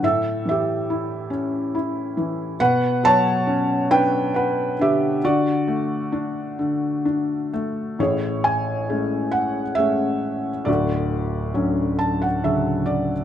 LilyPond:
<<
  \new Staff \with { instrumentName = "Felt piano" } { \time 3/4 \key d \major \tempo 4 = 68 << { e''8 e''4 r4. | fis''8 a''4 g''8 r8 e''8 | d''2~ d''8 r8 | \key a \major cis''8 gis''4 fis''8 e''4 |
d''4 r8 a''16 fis''16 e''8 d''8 | } \\ { a'8 g'4 r4. | b'8 cis''4 b'8 b'8 g'8 | fis'2~ fis'8 r8 | gis'4. r4. |
fis'4. r4. | } >> }
  \new Staff \with { instrumentName = "Felt piano" } { \clef bass \time 3/4 \key d \major a,8 e8 e'8 cis'8 e'8 e8 | b,8 fis8 cis'8 d'8 fis''8 d8 | d8 a8 d'8 d8 d'8 a8 | \key a \major <a,, a,>4 <gis a cis'>4 <gis a cis'>4 |
<d,, d,>4 <d fis cis'>4 <cis d fis>4 | }
>>